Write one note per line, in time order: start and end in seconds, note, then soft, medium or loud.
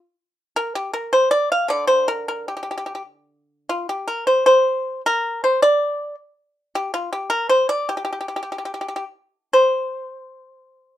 0.56 0.74 A#4 medium
0.75 0.93 G4 medium
0.93 1.11 A#4 medium
1.13 1.31 C5 medium
1.31 1.49 D5 medium
1.52 1.69 F5 medium
1.68 4.07 D3 medium
1.68 1.87 D5 medium
1.87 2.07 C5 medium
2.08 2.27 A#4 medium
2.28 2.47 A#4 medium
2.48 2.56 G4 medium
2.57 2.62 G4 soft
2.63 2.70 G4 soft
2.71 2.76 G4 soft
2.78 2.85 G4 soft
2.86 2.93 G4 soft
2.95 3.02 G4 soft
3.69 3.88 F4 medium
3.89 4.07 G4 medium
4.08 4.26 A#4 medium
4.27 4.45 C5 medium
4.46 5.00 C5 medium
5.06 5.41 A#4 medium
5.44 5.61 C5 medium
5.62 6.14 D5 medium
6.75 6.92 G4 medium
6.94 7.11 F4 medium
7.13 7.30 G4 medium
7.30 7.48 A#4 medium
7.49 7.68 C5 medium
7.69 7.88 D5 medium
7.89 7.96 G4 medium
7.97 8.03 G4 soft
8.05 8.11 G4 medium
8.13 8.19 G4 soft
8.21 8.27 G4 soft
8.28 8.35 G4 soft
8.36 8.41 G4 medium
8.43 8.50 G4 soft
8.52 8.57 G4 soft
8.58 8.64 G4 soft
8.65 8.72 G4 soft
8.74 8.80 G4 soft
8.81 8.87 G4 soft
8.88 8.95 G4 soft
8.96 9.03 G4 medium
9.53 10.97 C5 medium